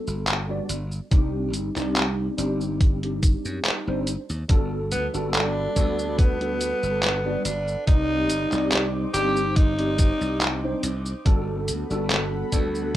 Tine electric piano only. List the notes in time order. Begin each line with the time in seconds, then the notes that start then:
Already playing: G3 B3 D4 F#4 A4
0.49 G3 B3 D4 F#4 D5
1.11 G3 C4 D4 D#4 G4
1.76 G3 C4 D4 D#4 G4
2.37 G3 C4 D4 D#4 G4
3.02 G3 C4 D4 D#4 G4
3.87 G3 C4 D4 D#4 C5
4.49 G3 B3 D4 F#4 A4
5.13 G3 B3 D4 F#4 A4
5.75 G3 B3 D4 F#4 A4
6.40 G3 B3 D4 F#4 A4
7.25 G3 B3 D4 F#4 D5
7.87 G3 C4 D#4 G4 D5
8.51 G3 C4 D#4 G4 D5
9.13 G3 C4 D4 D#4 G4
9.78 G3 C4 D#4 G4 D5
10.63 G3 C4 D4 D#4 C5
11.25 G3 B3 D4 F#4 A4
11.90 G3 B3 D4 F#4 A4
12.52 G3 B3 D4 F#4 A4